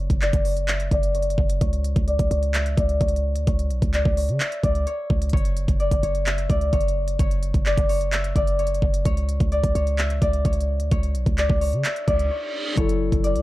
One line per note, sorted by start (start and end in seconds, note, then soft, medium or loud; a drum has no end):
0.00 0.27 C#5 medium
0.00 0.54 E5 medium
0.10 0.32 F#1 loud
0.10 kick medium
0.10 closed hi-hat medium
0.21 0.51 D5 medium
0.21 clap medium
0.21 closed hi-hat soft
0.33 0.89 F#1 loud
0.33 kick loud
0.33 closed hi-hat medium
0.45 0.97 C#5 medium
0.45 open hi-hat medium
0.57 closed hi-hat medium
0.68 2.40 E5 medium
0.68 clap loud
0.68 closed hi-hat medium
0.80 closed hi-hat medium
0.91 1.36 F#1 loud
0.91 1.21 D5 medium
0.91 kick medium
0.91 closed hi-hat medium
1.03 closed hi-hat soft
1.15 1.61 C#5 medium
1.15 closed hi-hat medium
1.22 closed hi-hat medium
1.30 closed hi-hat medium
1.38 1.60 F#1 loud
1.38 kick loud
1.50 closed hi-hat medium
1.61 1.95 C#2 loud
1.61 2.14 C#5 loud
1.61 kick loud
1.61 closed hi-hat medium
1.73 closed hi-hat medium
1.84 closed hi-hat medium
1.96 2.18 C#2 loud
1.96 kick medium
1.96 closed hi-hat medium
2.08 2.37 D5 medium
2.08 closed hi-hat soft
2.19 2.30 C#2 loud
2.19 kick loud
2.19 closed hi-hat medium
2.31 2.76 C#2 loud
2.31 2.84 C#5 medium
2.31 closed hi-hat medium
2.43 closed hi-hat soft
2.54 4.27 E5 medium
2.54 clap loud
2.54 closed hi-hat medium
2.66 closed hi-hat medium
2.77 3.00 C#2 loud
2.77 3.07 D5 medium
2.77 kick medium
2.77 closed hi-hat medium
2.89 closed hi-hat soft
3.01 3.37 C#2 loud
3.01 3.47 C#5 medium
3.01 kick medium
3.01 closed hi-hat medium
3.08 closed hi-hat medium
3.16 closed hi-hat medium
3.36 3.47 D2 loud
3.36 closed hi-hat medium
3.47 3.72 C#2 loud
3.47 4.00 C#5 loud
3.47 kick loud
3.47 closed hi-hat medium
3.59 closed hi-hat medium
3.70 3.82 B1 loud
3.70 closed hi-hat medium
3.82 4.04 C#2 loud
3.82 kick medium
3.82 closed hi-hat medium
3.94 4.23 D5 medium
3.94 clap medium
3.94 closed hi-hat medium
4.05 4.30 C#2 loud
4.05 kick medium
4.17 4.69 C#5 medium
4.17 open hi-hat medium
4.29 4.40 C#3 loud
4.29 closed hi-hat soft
4.40 6.12 E5 medium
4.40 clap loud
4.40 closed hi-hat medium
4.52 closed hi-hat medium
4.63 4.86 C#2 loud
4.63 4.93 D5 medium
4.63 kick medium
4.63 closed hi-hat medium
4.75 closed hi-hat soft
4.87 5.33 C#5 medium
4.87 closed hi-hat medium
5.10 5.32 C#2 loud
5.10 kick medium
5.22 closed hi-hat medium
5.29 5.67 F#1 loud
5.29 5.86 C#5 loud
5.29 kick loud
5.29 closed hi-hat medium
5.37 closed hi-hat soft
5.45 closed hi-hat medium
5.57 closed hi-hat medium
5.68 5.91 F#1 loud
5.68 kick medium
5.68 closed hi-hat medium
5.80 6.09 D5 medium
5.80 closed hi-hat soft
5.91 6.03 F#1 loud
5.91 kick medium
5.91 closed hi-hat medium
6.03 6.48 F#1 loud
6.03 6.56 C#5 medium
6.03 closed hi-hat medium
6.15 closed hi-hat medium
6.26 7.99 E5 medium
6.26 clap loud
6.26 closed hi-hat medium
6.38 closed hi-hat medium
6.50 6.72 C#2 loud
6.50 6.79 D5 medium
6.50 kick medium
6.50 closed hi-hat medium
6.61 closed hi-hat soft
6.73 7.18 F#1 loud
6.73 7.19 C#5 medium
6.73 kick medium
6.73 closed hi-hat medium
6.81 closed hi-hat medium
6.88 closed hi-hat medium
7.08 closed hi-hat medium
7.19 7.53 F#1 loud
7.19 7.72 C#5 medium
7.19 kick loud
7.19 closed hi-hat medium
7.31 closed hi-hat medium
7.43 closed hi-hat medium
7.54 7.77 F#1 loud
7.54 kick medium
7.54 closed hi-hat medium
7.66 7.95 D5 medium
7.66 clap medium
7.66 closed hi-hat soft
7.78 8.33 F#1 loud
7.78 kick loud
7.78 closed hi-hat medium
7.89 8.42 C#5 medium
7.89 open hi-hat medium
8.01 closed hi-hat medium
8.12 9.85 E5 medium
8.12 clap loud
8.12 closed hi-hat medium
8.24 closed hi-hat medium
8.36 8.80 F#1 loud
8.36 8.65 D5 medium
8.36 kick medium
8.36 closed hi-hat medium
8.47 closed hi-hat soft
8.59 9.05 C#5 medium
8.59 closed hi-hat medium
8.67 closed hi-hat medium
8.74 closed hi-hat medium
8.82 9.04 F#1 loud
8.82 kick loud
8.94 closed hi-hat medium
9.05 9.39 C#2 loud
9.05 9.58 C#5 loud
9.05 kick loud
9.05 closed hi-hat medium
9.17 closed hi-hat medium
9.29 closed hi-hat medium
9.40 9.63 C#2 loud
9.40 kick medium
9.40 closed hi-hat medium
9.52 9.81 D5 medium
9.52 closed hi-hat soft
9.64 9.75 C#2 loud
9.64 kick medium
9.64 closed hi-hat medium
9.75 10.20 C#2 loud
9.75 10.28 C#5 medium
9.75 closed hi-hat medium
9.87 closed hi-hat soft
9.98 11.71 E5 medium
9.98 clap loud
9.98 closed hi-hat medium
10.10 closed hi-hat medium
10.22 10.44 C#2 loud
10.22 10.51 D5 medium
10.22 kick medium
10.22 closed hi-hat medium
10.33 closed hi-hat soft
10.45 10.81 C#2 loud
10.45 10.91 C#5 medium
10.45 kick medium
10.45 closed hi-hat medium
10.53 closed hi-hat medium
10.60 closed hi-hat medium
10.80 10.91 D2 loud
10.80 closed hi-hat medium
10.91 11.16 C#2 loud
10.91 11.44 C#5 loud
10.91 kick loud
10.91 closed hi-hat medium
11.03 closed hi-hat medium
11.15 11.26 B1 loud
11.15 closed hi-hat medium
11.26 11.49 C#2 loud
11.26 kick medium
11.26 closed hi-hat medium
11.38 11.67 D5 medium
11.38 clap medium
11.38 closed hi-hat medium
11.50 11.74 C#2 loud
11.50 kick medium
11.61 12.14 C#5 medium
11.61 open hi-hat medium
11.73 11.84 C#3 loud
11.73 closed hi-hat soft
11.84 13.42 E5 medium
11.84 clap loud
11.84 closed hi-hat medium
11.84 reverse cymbal medium
11.96 closed hi-hat medium
12.08 12.30 C#2 loud
12.08 12.37 D5 medium
12.08 kick medium
12.08 closed hi-hat medium
12.19 closed hi-hat soft
12.31 12.77 C#5 medium
12.75 13.11 F#1 loud
12.75 13.39 F#3 medium
12.75 13.41 E4 loud
12.75 13.30 C#5 loud
12.75 kick loud
12.75 closed hi-hat medium
12.80 13.42 A4 loud
12.89 closed hi-hat medium
13.12 13.37 F#1 loud
13.12 kick medium
13.12 closed hi-hat medium
13.24 13.42 D5 medium
13.24 closed hi-hat medium
13.36 13.42 C#2 loud
13.36 closed hi-hat medium